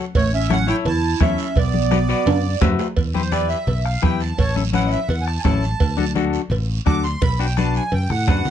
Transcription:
0.15 A1 A3 C#5, bombo low, cowbell, long guiro
0.33 C#4 E5
0.50 C#4 E4 A4 C#5 F#5, bombo rim, high conga, short guiro
0.67 E4 A4 C#5 G5, short guiro
0.85 E2 E4 A5, cowbell, low conga, long guiro
1.20 E2 C#4 E4 A4 C#5 E5, bombo low, bombo rim, high conga, low timbale, short guiro
1.38 short guiro
1.55 B1 B3 D5, bombo low, cowbell, long guiro
1.74 high conga
1.91 F#4 B4 D5, bombo rim, high conga, short guiro
2.09 F#4 B4 D5, short guiro
2.26 F#2, cowbell, low conga, high timbale, long guiro
2.61 F#2 F#4 B4 E5, bombo low, bombo rim, high conga, low conga, low timbale, short guiro
2.79 low timbale, short guiro
2.97 E2, bombo low, cowbell, long guiro
3.14 E4 G4 B4 C5, high conga
3.31 E4 G4 B4 D5, bombo rim, high conga, short guiro
3.49 E5, short guiro
3.67 B1, cowbell, low conga, long guiro
3.85 F5, bombo rim
4.02 E2 E4 G4 B4 G5, bombo low, bombo rim, high conga, short guiro
4.20 A5, short guiro
4.38 A1 C#5 A5, bombo low, cowbell, long guiro
4.56 C#4 E4 A4, high conga
4.73 C#4 E4 B4 F#5, bombo rim, high conga, short guiro
4.87 D#5
4.91 E5, short guiro
5.08 E2 F#5, cowbell, low conga, long guiro
5.21 G#5
5.26 A5, bombo rim
5.39 G#5
5.43 A1 C#4 E4 A4 A5, bombo low, bombo rim, high conga, low conga, low timbale, short guiro
5.63 short guiro
5.80 D2, bombo low, cowbell, long guiro
5.97 D4 F#4 A4, high conga
6.15 D4 F#4 A4, bombo rim, high conga, short guiro
6.33 short guiro
6.50 A1, cowbell, low conga, long guiro
6.86 D2 D4 F#4 A4 D6, bombo low, bombo rim, high conga, short guiro
7.04 C6, short guiro
7.21 B1 B5, bombo low, cowbell, high conga, long guiro
7.39 D4 F#4 B4 G5
7.57 D4 F#4 B4 A5, bombo rim, high conga, short guiro
7.75 G#5, short guiro
7.92 F#2 G5, cowbell, low conga, long guiro
8.10 A2 F#5, bombo rim, low conga
8.27 F#2 D4 F#4 B4, bombo low, bombo rim, low conga, low timbale, short guiro
8.45 E2, low conga, short guiro

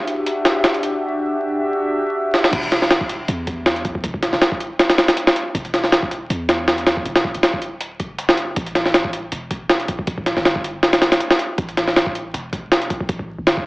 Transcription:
Already playing: D4 F#4 G4 E5
0.07 closed hi-hat
0.26 closed hi-hat
0.45 snare, closed hi-hat
0.64 snare, closed hi-hat
0.74 closed hi-hat
0.83 closed hi-hat
1.31 D4 F#4 G4 E5
2.34 snare
2.44 snare
2.53 E1, kick, closed hi-hat, crash
2.63 closed hi-hat
2.72 snare, closed hi-hat
2.82 snare
2.91 snare, closed hi-hat
3.01 kick
3.09 closed hi-hat
3.28 E2, closed hi-hat
3.47 kick, closed hi-hat
3.66 snare, closed hi-hat
3.76 closed hi-hat
3.85 kick, closed hi-hat
3.95 kick
4.04 E1, kick, closed hi-hat
4.14 kick
4.23 snare, closed hi-hat
4.33 D1, snare
4.42 snare, closed hi-hat
4.52 kick
4.60 closed hi-hat
4.79 snare, closed hi-hat
4.89 snare, closed hi-hat
4.98 snare, closed hi-hat
5.08 snare, closed hi-hat
5.17 closed hi-hat
5.27 snare
5.36 closed hi-hat
5.55 E1, kick, closed hi-hat
5.65 closed hi-hat
5.74 snare, closed hi-hat
5.84 snare
5.92 snare, closed hi-hat
6.03 kick
6.11 closed hi-hat
6.30 E2, closed hi-hat
6.49 snare, closed hi-hat
6.68 snare, closed hi-hat
6.78 closed hi-hat
6.86 snare, closed hi-hat
6.97 kick
7.05 E1, closed hi-hat
7.16 snare, closed hi-hat
7.24 kick
7.34 D1, closed hi-hat
7.43 snare, closed hi-hat
7.53 kick
7.62 closed hi-hat
7.81 closed hi-hat
8.00 F#1, kick, closed hi-hat
8.18 closed hi-hat
8.29 G1, snare
8.37 closed hi-hat
8.56 A1, kick, closed hi-hat
8.66 closed hi-hat
8.75 snare, closed hi-hat
8.85 snare
8.94 snare, closed hi-hat
9.04 kick
9.13 closed hi-hat
9.32 E1, closed hi-hat
9.51 kick, closed hi-hat
9.70 snare, closed hi-hat
9.80 closed hi-hat
9.88 kick, closed hi-hat
9.99 kick
10.07 A1, kick, closed hi-hat
10.18 kick
10.26 snare, closed hi-hat
10.37 G1, snare
10.45 snare, closed hi-hat
10.55 kick
10.64 closed hi-hat
10.83 snare, closed hi-hat
10.93 snare, closed hi-hat
11.02 snare, closed hi-hat
11.12 snare, closed hi-hat
11.20 closed hi-hat
11.31 snare
11.39 closed hi-hat
11.58 A1, kick, closed hi-hat
11.69 closed hi-hat
11.77 snare, closed hi-hat
11.88 snare
11.96 snare, closed hi-hat
12.06 kick
12.15 closed hi-hat
12.34 E1, closed hi-hat
12.53 kick, closed hi-hat
12.72 snare, closed hi-hat
12.82 closed hi-hat
12.90 kick, closed hi-hat
13.01 kick
13.09 A1, kick, closed hi-hat
13.19 kick
13.38 G1
13.47 snare, closed hi-hat
13.57 kick

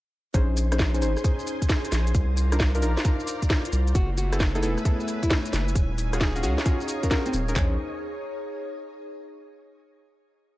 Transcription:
0.34 A#1 C#4 D#4 G#4 C5 G#5 C6, kick, closed hi-hat, shaker
0.57 G#4, open hi-hat, shaker
0.72 C#4 D#4 G#4 C5, cross-stick, closed hi-hat, shaker
0.79 kick, snare, shaker
0.86 C#4
0.94 C#4 D#4 G#4 C5, closed hi-hat, shaker
1.02 G#1 C#4 D#4 G#4 C5, open hi-hat, shaker
1.17 cross-stick, shaker
1.24 C#4 D#4 G#4 C5, kick, closed hi-hat, shaker
1.39 shaker
1.47 open hi-hat, shaker
1.62 kick, closed hi-hat, shaker
1.69 kick, snare, shaker
1.85 closed hi-hat, shaker
1.92 A#1, snare, open hi-hat, shaker
2.07 closed hi-hat, shaker
2.14 C2 F4 D5 F5 A#5, kick, closed hi-hat, shaker
2.27 A#4
2.37 open hi-hat, shaker
2.52 D4 D#4 F4 A#4, cross-stick, closed hi-hat, shaker
2.60 kick, snare, shaker
2.67 D6
2.75 D4 D#4 F4 A#4, open hi-hat, shaker
2.82 A#1 D4 D#4 F4 A#4, open hi-hat, shaker
2.97 cross-stick, snare, shaker
3.05 D4 D#4 F4 A#4, kick, closed hi-hat, shaker
3.20 shaker
3.27 open hi-hat, shaker
3.42 kick, closed hi-hat, shaker
3.50 kick, snare, shaker
3.65 closed hi-hat, shaker
3.73 C2, open hi-hat, shaker
3.87 closed hi-hat, shaker
3.95 F#1 E4 F#4 B4 E5 G#5, kick, closed hi-hat, shaker
4.12 A3
4.18 F#4, open hi-hat, shaker
4.33 B3 E4 G#4 A4, cross-stick, closed hi-hat, shaker
4.37 C#5, kick, snare, shaker
4.55 B3 D#4 E4 G#4 A4, closed hi-hat, shaker
4.63 E1 B3 E4 G#4 A4, open hi-hat, shaker
4.78 cross-stick, shaker
4.85 B3 E4 G#4 A4, kick, closed hi-hat, shaker
5.00 shaker
5.08 open hi-hat, shaker
5.23 E4, kick, closed hi-hat, shaker
5.30 kick, snare, shaker
5.46 closed hi-hat, shaker
5.53 F#1, snare, open hi-hat, shaker
5.68 closed hi-hat, shaker
5.75 D#1 D#4 C#5 D#5 F5, kick, closed hi-hat, shaker
5.98 open hi-hat, shaker
6.02 G#4
6.13 C#4 F4 F#4 G#4, cross-stick, closed hi-hat, shaker
6.21 G#4, kick, snare, shaker
6.36 C#4 F4 F#4 G#4, open hi-hat, shaker
6.43 C#2 C#4 F4 F#4 G#4, open hi-hat, shaker
6.58 cross-stick, snare, shaker
6.66 C#4 F4 F#4 G#4, kick, closed hi-hat, shaker
6.81 shaker
6.88 open hi-hat, shaker
7.03 C#4 F4 F#4 A#4, kick, closed hi-hat, shaker
7.11 C#4 F4 F#4 A#4, kick, snare, shaker
7.26 C4, closed hi-hat, shaker
7.33 D#1, open hi-hat, shaker
7.48 C#4 D#4 G#4 A#4, closed hi-hat, shaker
7.56 A#1 C#4 D#4 G#4 C5, kick, clap, floor tom
7.65 G#4
7.72 C#5

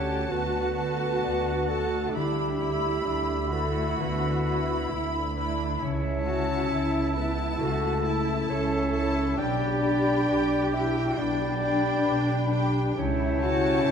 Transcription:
Already playing: D2 D3 A3 C#4 D4 F#4 G4 A4 C#5 D5 F#5 A5
0.28 D2 A3 B3 F#4 B4
0.76 F#4 A4 A5
1.23 D2 D5
1.67 A3 F#4 A4 A5
2.13 D2 D3 D4 E4 G4 E5 B5
2.18 G3
2.59 E4 B5
3.05 D2 D4 E5
3.51 A3 E4 F#4 A4 B4 B5
3.99 D2 D3 B3 B4 E5 B5
4.47 E4 B5
4.92 D2 E4 E5
5.36 D4 E4 B4 B5
5.81 C#2 C#3 C#4 E4 C#5 E5 A5
6.25 E4 F#4 A5
6.71 C#2 E4 E5
7.14 B3 E4 A4 B4 A5
7.59 C#2 C#3 A3 F#4 A4 E5 A5
8.03 E4 A5
8.48 C#2 C#4 A4 C#5 E5 A5
8.93 E4 A4 A5
9.38 B1 B2 D4 G4 D5 G5 B5
9.83 D4 G4 G5
10.28 B1 G4 B4
10.72 D4 E4 G4 E5 G5
11.17 B1 B2 D4 D5 G5 B5
11.60 D4 G4 G5
12.05 B1 B4
12.51 D4 G4 G5
12.96 C#2 C#3 C#4 E4 C#5 G5
13.01 A5
13.42 E4 F#4 G4 A5
13.86 C#2 E4 A4

